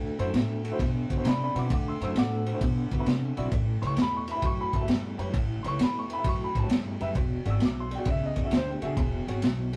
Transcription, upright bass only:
Already playing: D2
0.19 F#2
0.34 A2
0.79 B2
1.10 D3
1.24 C3
1.55 B2
1.70 D2
2.01 F#2
2.16 A2
2.61 B2
2.92 D3
3.06 C3
3.37 B1
3.52 A1
3.82 C#2
3.97 E2
4.42 F#2
4.73 A2
4.88 G2
5.18 F#2
5.34 A1
5.64 C#2
5.79 E2
6.24 F#2
6.55 A2
6.70 G2
7.01 F#2
7.15 E1
7.46 G#1
7.60 B1
8.06 C#2
8.36 E2
8.51 D2
8.82 C#2
8.97 E1
9.27 G#1
9.43 B1

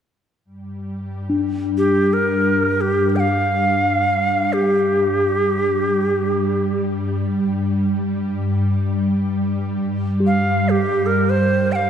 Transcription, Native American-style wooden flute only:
1.78 G4
2.13 A#4
2.81 G4
3.09 G4
3.16 F5 G5
4.53 G4
10.27 F5
10.69 G4
11.06 A#4
11.30 C5
11.72 F5 G5

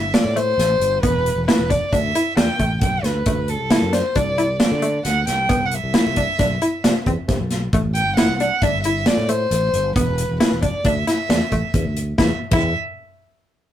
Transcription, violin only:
Already playing: E5
0.14 D5
0.36 C5
1.03 B4
1.47 B4
1.71 D5
1.92 E5
2.38 G5
2.82 G5
3.04 B4
3.49 A4
3.93 C5
4.16 D5
4.62 D5
5.06 F#5
5.28 G5
5.66 F#5
5.74 E5
7.94 G5
8.16 F#5
8.39 F#5
8.62 E5
8.83 E5
9.07 D5
9.29 C5
9.96 B4
10.41 B4
10.64 D5
10.87 E5
11.08 E5
12.19 E5
12.52 E5

